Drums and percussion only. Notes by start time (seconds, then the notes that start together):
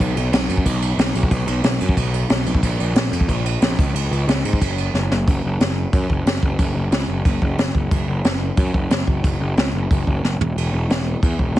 0.00 kick, crash
0.17 crash
0.33 snare, crash
0.49 crash
0.57 kick
0.66 kick, crash
0.82 crash
0.99 snare, crash
1.15 crash
1.23 kick
1.31 kick, crash
1.47 crash
1.64 snare, crash
1.80 crash
1.89 kick
1.97 kick, crash
2.14 crash
2.30 snare, crash
2.46 crash
2.55 kick
2.63 kick, crash
2.80 crash
2.96 snare, crash
3.13 crash
3.21 kick
3.29 kick, crash
3.46 crash
3.62 snare, crash
3.79 kick, crash
3.96 crash
4.12 crash
4.28 snare, crash
4.45 crash
4.53 kick
4.61 kick, crash
4.78 crash
4.95 snare
5.12 snare
5.28 kick, crash
5.60 snare, crash
5.93 kick, crash
6.10 kick
6.27 snare, crash
6.43 kick
6.59 kick, crash
6.92 snare, crash
7.25 kick, crash
7.42 kick
7.58 snare, crash
7.75 kick
7.91 kick, crash
8.24 snare, crash
8.57 kick, crash
8.74 kick
8.90 snare, crash
9.07 kick
9.24 kick, crash
9.57 snare, crash
9.91 kick, crash
10.07 kick
10.25 snare
10.41 floor tom
10.58 crash
10.90 snare, crash
11.23 kick, crash
11.39 kick
11.56 crash